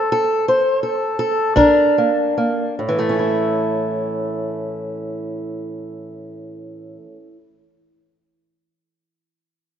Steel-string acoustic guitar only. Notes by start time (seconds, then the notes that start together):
Already playing: A4
0.12 A4
0.48 C5
0.83 A4
1.19 A4
1.56 A#2 D4 A#4
1.98 A#3
2.38 A#3
2.79 A2
2.89 E3
2.99 A3
3.09 C#4
3.19 E4